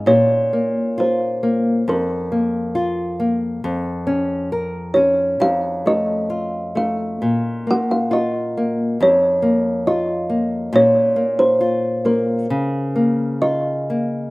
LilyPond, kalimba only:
\new Staff \with { instrumentName = "Kalimba" } { \time 2/4 \key bes \minor \tempo 4 = 67 des''4 c''4 | bes'4. r8 | r4. des''8 | f''8 ees''4 f''8~ |
f''8 ges''16 f''16 ees''4 | des''4 ees''4 | des''8. c''8. bes'8~ | bes'4 ees''4 | }